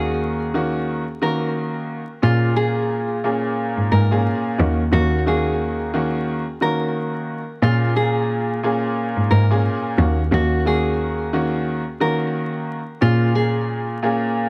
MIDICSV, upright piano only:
0, 0, Header, 1, 2, 480
1, 0, Start_track
1, 0, Key_signature, -5, "minor"
1, 0, Tempo, 674157
1, 1590, Time_signature, 4, 2, 24, 8
1, 10317, End_track
2, 0, Start_track
2, 0, Title_t, "Upright piano"
2, 0, Program_c, 0, 0
2, 0, Note_on_c, 0, 51, 88
2, 0, Note_on_c, 0, 58, 91
2, 0, Note_on_c, 0, 61, 82
2, 0, Note_on_c, 0, 66, 106
2, 354, Note_off_c, 0, 51, 0
2, 355, Note_off_c, 0, 58, 0
2, 356, Note_off_c, 0, 61, 0
2, 358, Note_off_c, 0, 66, 0
2, 385, Note_on_c, 0, 51, 98
2, 387, Note_on_c, 0, 58, 89
2, 390, Note_on_c, 0, 61, 88
2, 392, Note_on_c, 0, 66, 104
2, 730, Note_off_c, 0, 51, 0
2, 731, Note_off_c, 0, 58, 0
2, 732, Note_off_c, 0, 61, 0
2, 733, Note_off_c, 0, 66, 0
2, 866, Note_on_c, 0, 51, 100
2, 869, Note_on_c, 0, 58, 81
2, 871, Note_on_c, 0, 61, 82
2, 873, Note_on_c, 0, 66, 94
2, 1429, Note_off_c, 0, 51, 0
2, 1430, Note_off_c, 0, 58, 0
2, 1431, Note_off_c, 0, 61, 0
2, 1432, Note_off_c, 0, 66, 0
2, 1581, Note_on_c, 0, 46, 90
2, 1584, Note_on_c, 0, 58, 81
2, 1586, Note_on_c, 0, 61, 88
2, 1589, Note_on_c, 0, 68, 89
2, 2255, Note_off_c, 0, 46, 0
2, 2256, Note_off_c, 0, 58, 0
2, 2257, Note_off_c, 0, 61, 0
2, 2259, Note_off_c, 0, 68, 0
2, 2306, Note_on_c, 0, 46, 94
2, 2309, Note_on_c, 0, 58, 87
2, 2311, Note_on_c, 0, 61, 86
2, 2313, Note_on_c, 0, 68, 95
2, 2869, Note_off_c, 0, 46, 0
2, 2870, Note_off_c, 0, 58, 0
2, 2871, Note_off_c, 0, 61, 0
2, 2872, Note_off_c, 0, 68, 0
2, 2926, Note_on_c, 0, 46, 89
2, 2928, Note_on_c, 0, 58, 82
2, 2930, Note_on_c, 0, 61, 82
2, 2933, Note_on_c, 0, 68, 108
2, 3254, Note_off_c, 0, 58, 0
2, 3257, Note_off_c, 0, 61, 0
2, 3263, Note_on_c, 0, 51, 87
2, 3265, Note_on_c, 0, 58, 82
2, 3267, Note_on_c, 0, 61, 75
2, 3269, Note_on_c, 0, 66, 95
2, 3271, Note_off_c, 0, 46, 0
2, 3274, Note_off_c, 0, 68, 0
2, 3421, Note_off_c, 0, 51, 0
2, 3422, Note_off_c, 0, 58, 0
2, 3423, Note_off_c, 0, 61, 0
2, 3424, Note_off_c, 0, 66, 0
2, 3500, Note_on_c, 0, 51, 85
2, 3502, Note_on_c, 0, 58, 86
2, 3504, Note_on_c, 0, 61, 80
2, 3507, Note_on_c, 0, 66, 97
2, 3728, Note_off_c, 0, 51, 0
2, 3729, Note_off_c, 0, 58, 0
2, 3730, Note_off_c, 0, 61, 0
2, 3731, Note_off_c, 0, 66, 0
2, 3746, Note_on_c, 0, 51, 89
2, 3748, Note_on_c, 0, 58, 89
2, 3751, Note_on_c, 0, 61, 85
2, 3753, Note_on_c, 0, 66, 104
2, 4194, Note_off_c, 0, 51, 0
2, 4195, Note_off_c, 0, 58, 0
2, 4197, Note_off_c, 0, 61, 0
2, 4198, Note_off_c, 0, 66, 0
2, 4227, Note_on_c, 0, 51, 102
2, 4229, Note_on_c, 0, 58, 88
2, 4231, Note_on_c, 0, 61, 87
2, 4234, Note_on_c, 0, 66, 104
2, 4571, Note_off_c, 0, 51, 0
2, 4572, Note_off_c, 0, 58, 0
2, 4573, Note_off_c, 0, 61, 0
2, 4574, Note_off_c, 0, 66, 0
2, 4707, Note_on_c, 0, 51, 93
2, 4709, Note_on_c, 0, 58, 81
2, 4712, Note_on_c, 0, 61, 81
2, 4714, Note_on_c, 0, 66, 93
2, 5269, Note_off_c, 0, 51, 0
2, 5270, Note_off_c, 0, 58, 0
2, 5272, Note_off_c, 0, 61, 0
2, 5273, Note_off_c, 0, 66, 0
2, 5424, Note_on_c, 0, 46, 95
2, 5427, Note_on_c, 0, 58, 82
2, 5429, Note_on_c, 0, 61, 90
2, 5431, Note_on_c, 0, 68, 92
2, 6097, Note_off_c, 0, 46, 0
2, 6098, Note_off_c, 0, 58, 0
2, 6099, Note_off_c, 0, 61, 0
2, 6100, Note_off_c, 0, 68, 0
2, 6146, Note_on_c, 0, 46, 97
2, 6148, Note_on_c, 0, 58, 90
2, 6151, Note_on_c, 0, 61, 86
2, 6153, Note_on_c, 0, 68, 103
2, 6709, Note_off_c, 0, 46, 0
2, 6710, Note_off_c, 0, 58, 0
2, 6711, Note_off_c, 0, 61, 0
2, 6712, Note_off_c, 0, 68, 0
2, 6767, Note_on_c, 0, 46, 96
2, 6769, Note_on_c, 0, 58, 87
2, 6771, Note_on_c, 0, 61, 84
2, 6774, Note_on_c, 0, 68, 112
2, 7096, Note_off_c, 0, 58, 0
2, 7098, Note_off_c, 0, 61, 0
2, 7104, Note_on_c, 0, 51, 90
2, 7106, Note_on_c, 0, 58, 84
2, 7109, Note_on_c, 0, 61, 80
2, 7111, Note_off_c, 0, 46, 0
2, 7111, Note_on_c, 0, 66, 102
2, 7115, Note_off_c, 0, 68, 0
2, 7261, Note_off_c, 0, 51, 0
2, 7262, Note_off_c, 0, 58, 0
2, 7264, Note_off_c, 0, 61, 0
2, 7265, Note_off_c, 0, 66, 0
2, 7341, Note_on_c, 0, 51, 87
2, 7344, Note_on_c, 0, 58, 94
2, 7346, Note_on_c, 0, 61, 89
2, 7348, Note_on_c, 0, 66, 98
2, 7569, Note_off_c, 0, 51, 0
2, 7570, Note_off_c, 0, 58, 0
2, 7571, Note_off_c, 0, 61, 0
2, 7572, Note_off_c, 0, 66, 0
2, 7586, Note_on_c, 0, 51, 89
2, 7588, Note_on_c, 0, 58, 92
2, 7590, Note_on_c, 0, 61, 84
2, 7593, Note_on_c, 0, 66, 104
2, 8034, Note_off_c, 0, 51, 0
2, 8035, Note_off_c, 0, 58, 0
2, 8036, Note_off_c, 0, 61, 0
2, 8038, Note_off_c, 0, 66, 0
2, 8068, Note_on_c, 0, 51, 105
2, 8070, Note_on_c, 0, 58, 90
2, 8072, Note_on_c, 0, 61, 93
2, 8075, Note_on_c, 0, 66, 106
2, 8411, Note_off_c, 0, 51, 0
2, 8412, Note_off_c, 0, 58, 0
2, 8413, Note_off_c, 0, 61, 0
2, 8415, Note_off_c, 0, 66, 0
2, 8547, Note_on_c, 0, 51, 99
2, 8550, Note_on_c, 0, 58, 80
2, 8552, Note_on_c, 0, 61, 83
2, 8554, Note_on_c, 0, 66, 97
2, 9109, Note_off_c, 0, 51, 0
2, 9110, Note_off_c, 0, 58, 0
2, 9112, Note_off_c, 0, 61, 0
2, 9113, Note_off_c, 0, 66, 0
2, 9263, Note_on_c, 0, 46, 95
2, 9265, Note_on_c, 0, 58, 82
2, 9268, Note_on_c, 0, 61, 88
2, 9270, Note_on_c, 0, 68, 91
2, 9936, Note_off_c, 0, 46, 0
2, 9937, Note_off_c, 0, 58, 0
2, 9938, Note_off_c, 0, 61, 0
2, 9939, Note_off_c, 0, 68, 0
2, 9986, Note_on_c, 0, 46, 100
2, 9988, Note_on_c, 0, 58, 91
2, 9991, Note_on_c, 0, 61, 85
2, 9993, Note_on_c, 0, 68, 100
2, 10317, Note_off_c, 0, 46, 0
2, 10317, Note_off_c, 0, 58, 0
2, 10317, Note_off_c, 0, 61, 0
2, 10317, Note_off_c, 0, 68, 0
2, 10317, End_track
0, 0, End_of_file